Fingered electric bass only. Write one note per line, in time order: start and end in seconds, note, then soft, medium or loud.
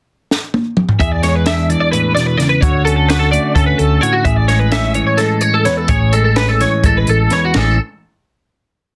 1.01 1.74 E2 medium
2.63 3.37 D2 medium
3.56 3.74 D2 medium
3.79 3.98 D2 medium
4.26 5.00 A1 medium
5.89 6.65 A1 medium
6.84 7.03 A1 medium
7.08 7.27 A1 medium
7.55 7.77 A1 medium